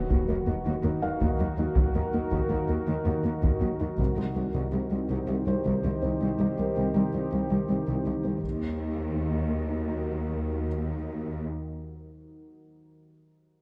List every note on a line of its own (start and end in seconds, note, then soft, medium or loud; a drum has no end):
0.00 3.95 D#3 medium
0.00 3.95 D#4 medium
0.00 3.95 F#4 medium
0.00 3.95 A#4 medium
0.00 impact soft
0.10 0.18 D#2 medium
0.10 0.21 D#3 medium
0.10 taiko medium
0.28 0.36 D#2 soft
0.28 0.40 A#3 medium
0.47 0.54 D#2 soft
0.47 0.58 A#3 medium
0.66 0.73 D#2 medium
0.66 0.77 D#3 medium
0.84 0.91 D#2 soft
0.84 0.95 A#3 soft
1.02 1.10 D#2 soft
1.02 1.14 A#3 medium
1.02 3.21 F5 soft
1.21 1.28 D#2 medium
1.21 1.32 D#3 medium
1.21 taiko medium
1.39 1.47 D#2 soft
1.39 1.51 F#3 medium
1.58 1.65 D#2 soft
1.58 1.70 D#4 medium
1.77 1.84 D#2 soft
1.77 1.89 D#3 medium
1.77 taiko medium
1.95 2.03 D#2 soft
1.95 2.07 A#3 soft
2.13 2.21 D#2 soft
2.13 2.25 A#3 medium
2.31 2.39 D#2 soft
2.31 2.43 D#3 medium
2.31 taiko medium
2.50 2.57 D#2 soft
2.50 2.62 A#3 soft
2.69 2.76 D#2 soft
2.69 2.80 A#3 medium
2.87 2.95 D#2 medium
2.87 2.99 D#3 medium
3.06 3.13 D#2 soft
3.06 3.17 A#3 soft
3.24 3.32 D#2 soft
3.24 3.36 A#3 soft
3.43 3.50 D#2 medium
3.43 3.54 D#3 medium
3.43 taiko medium
3.61 3.69 D#2 soft
3.61 3.73 F#3 soft
3.80 3.88 D#2 soft
3.80 3.92 D#4 soft
3.98 4.06 C2 medium
3.98 4.10 C3 medium
3.98 8.39 D#3 medium
3.98 8.40 D#4 medium
3.98 8.44 G4 medium
3.98 8.43 C5 medium
3.98 taiko medium
4.17 4.24 C2 soft
4.17 4.29 G3 soft
4.36 4.43 C2 soft
4.36 4.47 G3 soft
4.54 4.62 C2 medium
4.54 4.65 C3 medium
4.73 4.80 C2 soft
4.73 4.84 G3 medium
4.91 4.99 C2 soft
4.91 5.03 G3 medium
5.10 5.17 C2 medium
5.10 5.21 C3 medium
5.28 5.36 C2 soft
5.28 5.39 G3 soft
5.47 5.55 C2 soft
5.47 5.58 G3 medium
5.47 7.66 C5 soft
5.65 5.73 C2 medium
5.65 5.76 C3 medium
5.65 taiko soft
5.84 5.92 C2 soft
5.84 5.95 D#3 soft
6.03 6.10 C2 soft
6.03 6.14 C4 medium
6.21 6.29 C2 medium
6.21 6.32 C3 medium
6.40 6.47 C2 soft
6.40 6.51 G3 medium
6.58 6.66 C2 soft
6.58 6.70 G3 medium
6.58 8.40 A#4 soft
6.77 6.84 C2 medium
6.77 6.88 C3 medium
6.95 7.03 C2 soft
6.95 7.07 G3 medium
7.13 7.21 C2 soft
7.13 7.26 G3 medium
7.32 7.40 C2 medium
7.32 7.44 C3 medium
7.51 7.58 C2 soft
7.51 7.62 G3 medium
7.69 7.77 C2 soft
7.69 7.80 G3 soft
7.88 7.95 C2 medium
7.88 7.99 C3 medium
8.06 8.14 C2 soft
8.06 8.17 D#3 soft
8.24 8.32 C2 soft
8.24 8.36 C4 soft
8.43 11.42 D#2 soft
8.43 11.42 D#3 medium
8.43 11.42 D#4 medium
8.43 11.42 F#4 medium
8.43 11.42 A#4 medium
8.43 taiko soft